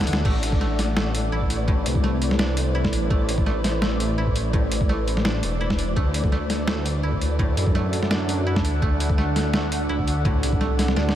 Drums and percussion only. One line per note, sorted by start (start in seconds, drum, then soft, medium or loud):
0.01 snare medium
0.07 closed hi-hat medium
0.13 snare loud
0.25 kick loud
0.25 crash medium
0.43 closed hi-hat medium
0.52 kick loud
0.61 snare soft
0.79 snare medium
0.79 closed hi-hat medium
0.97 snare loud
1.15 closed hi-hat medium
1.42 kick medium
1.50 closed hi-hat medium
1.68 kick loud
1.86 closed hi-hat medium
1.95 kick loud
2.04 snare soft
2.22 closed hi-hat medium
2.31 snare medium
2.39 snare loud
2.57 closed hi-hat medium
2.84 kick medium
2.84 snare medium
2.93 closed hi-hat medium
3.10 kick loud
3.29 closed hi-hat medium
3.38 kick loud
3.47 snare soft
3.64 snare medium
3.64 closed hi-hat medium
3.82 snare loud
4.00 closed hi-hat medium
4.27 kick medium
4.36 closed hi-hat medium
4.53 kick loud
4.72 closed hi-hat medium
4.81 kick loud
4.90 snare soft
5.08 closed hi-hat medium
5.17 snare medium
5.25 snare loud
5.43 closed hi-hat medium
5.70 kick medium
5.70 snare medium
5.79 closed hi-hat medium
5.96 kick loud
6.14 closed hi-hat medium
6.24 kick loud
6.32 snare soft
6.50 snare medium
6.50 closed hi-hat medium
6.68 snare loud
6.86 closed hi-hat medium
7.13 kick medium
7.21 closed hi-hat medium
7.39 kick loud
7.57 closed hi-hat medium
7.67 kick loud
7.75 snare soft
7.93 closed hi-hat medium
8.03 snare medium
8.11 snare loud
8.29 closed hi-hat medium
8.56 kick medium
8.56 snare medium
8.65 closed hi-hat medium
8.82 kick loud
9.00 closed hi-hat medium
9.10 kick loud
9.18 snare soft
9.36 snare medium
9.36 closed hi-hat medium
9.54 snare loud
9.72 closed hi-hat medium
9.99 kick medium
10.08 closed hi-hat medium
10.25 kick loud
10.43 closed hi-hat medium
10.53 kick loud
10.61 snare soft
10.79 snare medium
10.79 closed hi-hat medium
10.88 snare medium
10.97 snare medium
11.09 snare medium